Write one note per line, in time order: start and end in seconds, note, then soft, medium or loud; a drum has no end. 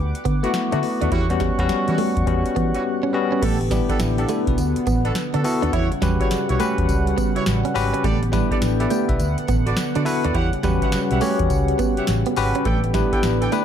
0.00 0.12 D2 loud
0.00 1.09 B4 medium
0.00 3.39 F#5 medium
0.00 1.09 D6 medium
0.15 closed hi-hat medium
0.25 0.40 D3 loud
0.25 0.40 B3 medium
0.25 kick loud
0.25 closed hi-hat medium
0.43 0.62 A3 loud
0.43 0.52 A3 medium
0.43 0.62 B3 medium
0.43 0.52 B3 medium
0.43 0.52 D4 medium
0.43 0.62 E4 medium
0.43 0.53 F#4 medium
0.43 0.62 F#4 loud
0.43 closed hi-hat medium
0.54 snare loud
0.54 closed hi-hat medium
0.72 0.81 D3 loud
0.72 1.10 A3 medium
0.72 0.81 A3 medium
0.72 1.10 B3 medium
0.72 0.81 B3 medium
0.72 0.81 D4 medium
0.72 1.10 E4 medium
0.72 1.10 F#4 loud
0.72 0.81 F#4 medium
0.72 closed hi-hat medium
0.83 muted clean electric guitar stroke medium
0.83 open hi-hat medium
1.01 1.10 D#2 medium
1.01 1.10 A3 medium
1.01 1.10 B3 medium
1.01 1.10 D4 medium
1.01 1.10 F#4 medium
1.01 closed hi-hat medium
1.12 1.50 E2 loud
1.12 1.27 G3 loud
1.12 3.41 G3 medium
1.12 1.27 C#4 medium
1.12 1.27 E4 medium
1.12 1.27 F#4 loud
1.12 3.40 C#6 medium
1.12 kick loud
1.12 closed hi-hat loud
1.30 1.48 G3 loud
1.30 1.48 B3 loud
1.30 1.48 C#4 loud
1.30 1.49 F#4 loud
1.30 muted clean electric guitar stroke soft
1.30 closed hi-hat medium
1.40 1.56 G3 medium
1.40 kick loud
1.40 snare medium
1.40 closed hi-hat medium
1.59 1.67 E2 medium
1.59 2.08 G3 loud
1.59 1.68 G3 medium
1.59 2.08 B3 medium
1.59 1.68 C#4 medium
1.59 2.09 C#4 medium
1.59 1.68 E4 medium
1.59 1.68 F#4 medium
1.59 2.09 F#4 loud
1.59 kick loud
1.59 closed hi-hat medium
1.69 muted fingered electric bass stroke soft
1.69 snare loud
1.69 closed hi-hat medium
1.88 1.97 E3 loud
1.88 1.97 G3 medium
1.88 1.97 C#4 medium
1.88 1.97 E4 medium
1.88 1.97 F#4 medium
1.88 closed hi-hat medium
1.98 2.13 A3 medium
1.98 open hi-hat medium
2.17 2.25 E2 medium
2.17 kick medium
2.17 closed hi-hat medium
2.26 2.42 E2 medium
2.26 2.89 G3 medium
2.26 2.89 B3 medium
2.26 2.90 C#4 medium
2.26 2.90 F#4 loud
2.26 kick loud
2.26 closed hi-hat medium
2.46 closed hi-hat medium
2.56 2.71 E3 loud
2.56 2.71 B3 medium
2.56 kick loud
2.56 closed hi-hat medium
2.74 2.83 G3 medium
2.74 2.83 C#4 medium
2.74 2.83 E4 medium
2.74 2.83 F#4 medium
2.74 closed hi-hat medium
3.03 3.12 C#4 medium
3.13 3.42 G3 loud
3.13 3.43 B3 loud
3.13 3.43 C#4 medium
3.13 3.43 F#4 loud
3.13 muted clean electric guitar stroke soft
3.32 3.41 C#4 medium
3.42 3.81 A1 loud
3.42 5.71 D3 medium
3.42 3.58 A3 medium
3.42 3.58 B3 medium
3.42 5.71 B3 medium
3.42 3.58 D4 medium
3.42 4.57 G4 medium
3.42 3.58 G4 medium
3.42 3.58 A4 loud
3.42 kick loud
3.42 closed hi-hat loud
3.42 crash loud
3.61 muted clean electric guitar stroke soft
3.61 closed hi-hat medium
3.71 3.87 G3 medium
3.71 3.99 B3 loud
3.71 4.00 D4 medium
3.71 3.99 E4 medium
3.71 4.01 G4 loud
3.71 kick loud
3.71 snare medium
3.71 closed hi-hat medium
3.71 tambourine medium
3.89 3.98 B3 medium
3.89 3.98 D4 medium
3.89 3.98 G4 medium
3.89 3.99 A4 medium
3.89 kick loud
3.89 closed hi-hat medium
4.00 4.24 A1 loud
4.00 4.18 B3 medium
4.00 4.18 E4 medium
4.00 snare loud
4.00 closed hi-hat medium
4.00 tambourine medium
4.18 4.27 B3 medium
4.18 4.27 D4 medium
4.18 4.29 D4 medium
4.18 4.27 G4 medium
4.18 4.28 G4 medium
4.18 4.27 A4 medium
4.18 closed hi-hat medium
4.29 4.44 A3 medium
4.29 4.47 E4 medium
4.29 4.47 A4 medium
4.29 closed hi-hat medium
4.29 tambourine medium
4.47 4.56 B1 loud
4.47 4.75 F#4 medium
4.47 4.75 B4 medium
4.47 kick medium
4.47 closed hi-hat medium
4.57 4.73 D2 loud
4.57 8.00 F#5 medium
4.57 closed hi-hat medium
4.57 tambourine medium
4.76 closed hi-hat medium
4.87 5.10 A1 loud
4.87 5.02 B3 medium
4.87 kick loud
4.87 closed hi-hat medium
4.87 tambourine medium
5.05 5.14 B3 medium
5.05 5.14 D4 medium
5.05 5.14 F#4 medium
5.05 5.14 A4 medium
5.05 closed hi-hat medium
5.15 snare loud
5.15 closed hi-hat medium
5.15 tambourine medium
5.33 5.43 D3 loud
5.33 5.42 B3 medium
5.33 5.43 D4 medium
5.33 5.43 F#4 medium
5.33 5.43 A4 medium
5.33 closed hi-hat medium
5.44 5.73 B3 loud
5.44 5.73 E4 loud
5.44 5.73 F#4 loud
5.44 5.74 A4 loud
5.44 muted clean electric guitar stroke soft
5.44 open hi-hat medium
5.44 tambourine medium
5.62 5.72 D#2 loud
5.62 5.71 B3 medium
5.62 5.71 D4 medium
5.62 5.72 D4 medium
5.62 5.72 F#4 medium
5.62 5.72 A4 medium
5.62 closed hi-hat medium
5.73 5.88 E2 loud
5.73 8.02 C#3 medium
5.73 8.02 G3 medium
5.73 5.89 E4 medium
5.73 5.88 E4 medium
5.73 5.89 F#4 medium
5.73 5.89 G4 medium
5.73 5.89 C#5 loud
5.73 kick loud
5.73 closed hi-hat loud
5.91 muted clean electric guitar stroke soft
5.91 closed hi-hat medium
6.02 6.17 E2 medium
6.02 6.17 G3 medium
6.02 6.46 C#4 loud
6.02 6.46 F#4 medium
6.02 6.47 G4 medium
6.02 6.47 B4 loud
6.02 kick loud
6.02 snare medium
6.02 closed hi-hat medium
6.02 tambourine medium
6.20 6.29 E4 medium
6.20 6.29 F#4 medium
6.20 6.29 G4 medium
6.20 6.29 C#5 medium
6.20 kick loud
6.20 closed hi-hat medium
6.31 muted fingered electric bass stroke soft
6.31 snare loud
6.31 closed hi-hat medium
6.31 tambourine medium
6.49 6.58 B1 medium
6.49 6.58 E4 medium
6.49 6.58 F#4 medium
6.49 6.58 G4 medium
6.49 6.58 C#5 medium
6.49 closed hi-hat medium
6.59 6.75 A3 medium
6.59 7.43 C#4 loud
6.59 7.43 F#4 medium
6.59 7.43 G4 medium
6.59 7.43 B4 loud
6.59 closed hi-hat medium
6.59 tambourine medium
6.78 6.87 E2 medium
6.78 kick medium
6.78 closed hi-hat medium
6.89 7.12 C#2 loud
6.89 kick loud
6.89 closed hi-hat medium
6.89 tambourine medium
7.07 closed hi-hat medium
7.18 7.33 B3 medium
7.18 kick loud
7.18 closed hi-hat medium
7.18 tambourine medium
7.36 7.44 E4 medium
7.36 7.45 F#4 medium
7.36 7.45 G4 medium
7.36 7.45 C#5 medium
7.36 closed hi-hat medium
7.46 7.62 A1 medium
7.46 snare loud
7.46 closed hi-hat medium
7.46 tambourine medium
7.65 7.73 C#4 medium
7.65 closed hi-hat medium
7.74 7.90 G#1 loud
7.74 8.04 C#4 loud
7.74 8.04 F#4 medium
7.74 8.04 G4 loud
7.74 8.04 B4 loud
7.74 muted clean electric guitar stroke soft
7.74 open hi-hat medium
7.74 tambourine medium
7.94 8.02 C#4 medium
7.94 closed hi-hat medium
8.04 8.42 A1 loud
8.04 10.33 D3 medium
8.04 8.19 A3 medium
8.04 10.33 B3 medium
8.04 8.19 G4 medium
8.04 9.18 G4 medium
8.04 8.19 A4 medium
8.04 8.20 B4 medium
8.04 8.20 D5 loud
8.04 kick loud
8.04 closed hi-hat medium
8.23 muted clean electric guitar stroke soft
8.23 closed hi-hat medium
8.32 8.48 G3 medium
8.32 8.77 D4 medium
8.32 8.77 E4 medium
8.32 8.77 G4 medium
8.32 8.62 B4 loud
8.32 kick medium
8.32 snare medium
8.32 closed hi-hat medium
8.32 tambourine medium
8.51 8.60 G4 medium
8.51 8.60 A4 medium
8.51 8.60 B4 medium
8.51 8.60 D5 medium
8.51 kick loud
8.51 closed hi-hat medium
8.62 8.85 A1 medium
8.62 snare loud
8.62 closed hi-hat medium
8.62 tambourine medium
8.80 8.89 G4 medium
8.80 8.89 A4 medium
8.80 8.89 B4 medium
8.80 8.90 B4 medium
8.80 8.89 D5 medium
8.80 8.90 E5 medium
8.80 closed hi-hat medium
8.90 9.06 A3 medium
8.90 9.08 D5 medium
8.90 9.08 G5 medium
8.90 closed hi-hat medium
8.90 tambourine medium
9.09 9.18 B1 loud
9.09 9.36 B4 medium
9.09 9.36 E5 medium
9.09 kick loud
9.09 closed hi-hat medium
9.20 9.35 D2 loud
9.20 12.62 F#5 loud
9.20 closed hi-hat medium
9.20 tambourine medium
9.38 closed hi-hat medium
9.48 9.72 A1 loud
9.48 9.63 B3 medium
9.48 kick loud
9.48 closed hi-hat medium
9.48 tambourine medium
9.66 9.75 F#4 medium
9.66 9.75 A4 medium
9.66 9.75 B4 medium
9.66 9.76 D5 medium
9.66 closed hi-hat medium
9.77 snare loud
9.77 closed hi-hat medium
9.77 tambourine loud
9.95 10.04 D3 loud
9.95 10.04 D4 medium
9.95 10.04 F#4 medium
9.95 10.04 A4 medium
9.95 10.04 B4 medium
9.95 10.04 D5 medium
9.95 closed hi-hat medium
10.05 10.34 E4 loud
10.05 10.35 F#4 medium
10.05 10.35 A4 medium
10.05 10.35 B4 loud
10.05 muted clean electric guitar stroke soft
10.05 open hi-hat medium
10.05 tambourine medium
10.24 10.33 D#2 medium
10.24 10.33 D4 medium
10.24 10.33 F#4 medium
10.24 10.33 A4 medium
10.24 10.33 B4 medium
10.24 10.33 D5 medium
10.24 closed hi-hat medium
10.35 10.50 E2 loud
10.35 12.63 C#3 medium
10.35 12.63 G3 medium
10.35 10.50 E4 medium
10.35 10.50 G4 loud
10.35 10.50 C#5 medium
10.35 10.50 E5 medium
10.35 10.50 F#5 loud
10.35 kick loud
10.35 closed hi-hat medium
10.53 muted clean electric guitar stroke soft
10.53 closed hi-hat medium
10.63 10.79 E2 medium
10.63 10.79 G3 medium
10.63 11.08 C#4 medium
10.63 11.08 F#4 medium
10.63 11.08 G4 medium
10.63 11.08 B4 loud
10.63 kick loud
10.63 snare medium
10.63 closed hi-hat medium
10.63 tambourine medium
10.82 10.91 G4 medium
10.82 10.91 C#5 medium
10.82 10.91 E5 medium
10.82 10.91 F#5 medium
10.82 kick loud
10.82 closed hi-hat medium
10.92 muted fingered electric bass stroke soft
10.92 snare loud
10.92 closed hi-hat medium
10.92 tambourine loud
11.11 11.20 B1 medium
11.11 11.20 G4 medium
11.11 11.20 C#5 medium
11.11 11.20 E5 medium
11.11 11.20 F#5 medium
11.11 closed hi-hat medium
11.21 11.37 A3 medium
11.21 12.04 C#4 medium
11.21 12.04 F#4 medium
11.21 12.05 G4 medium
11.21 12.05 C#5 loud
11.21 open hi-hat medium
11.21 tambourine medium
11.39 11.48 E2 medium
11.39 kick medium
11.39 closed hi-hat medium
11.50 11.74 C#2 loud
11.50 kick loud
11.50 closed hi-hat medium
11.50 tambourine medium
11.68 closed hi-hat medium
11.79 11.94 B3 medium
11.79 kick loud
11.79 closed hi-hat medium
11.79 tambourine medium
11.97 12.06 G4 medium
11.97 12.06 C#5 medium
11.97 12.06 E5 medium
11.97 12.06 F#5 medium
11.97 closed hi-hat medium
12.07 12.23 A1 loud
12.07 snare loud
12.07 closed hi-hat medium
12.07 tambourine medium
12.26 12.35 B3 medium
12.26 closed hi-hat medium
12.36 12.52 G#1 medium
12.36 12.65 C#4 loud
12.36 12.66 F#4 loud
12.36 12.66 G4 loud
12.36 12.66 B4 loud
12.36 muted clean electric guitar stroke soft
12.36 open hi-hat medium
12.36 tambourine medium
12.55 12.64 C#4 medium
12.55 closed hi-hat medium
12.65 13.04 A1 loud
12.65 13.65 D3 medium
12.65 12.81 A3 medium
12.65 13.65 B3 medium
12.65 13.65 G4 medium
12.65 12.81 A4 loud
12.65 12.81 B4 medium
12.65 12.81 D5 medium
12.65 12.81 G5 loud
12.65 kick loud
12.65 closed hi-hat medium
12.84 muted clean electric guitar stroke soft
12.84 closed hi-hat medium
12.94 13.10 G3 medium
12.94 13.38 D4 loud
12.94 13.39 E4 medium
12.94 13.39 G4 medium
12.94 13.39 B4 loud
12.94 kick loud
12.94 snare medium
12.94 closed hi-hat medium
12.94 tambourine medium
13.13 13.21 A4 medium
13.13 13.22 B4 medium
13.13 13.22 D5 medium
13.13 13.22 G5 medium
13.13 kick loud
13.13 closed hi-hat medium
13.23 13.47 A1 medium
13.23 snare loud
13.23 closed hi-hat medium
13.23 tambourine medium
13.41 13.50 A4 medium
13.41 13.50 B4 medium
13.41 13.50 D5 medium
13.41 13.51 G5 medium
13.41 closed hi-hat medium
13.52 13.65 A3 medium
13.52 13.65 D4 medium
13.52 13.65 E4 medium
13.52 13.65 G4 medium
13.52 13.65 B4 loud
13.52 closed hi-hat medium
13.52 tambourine medium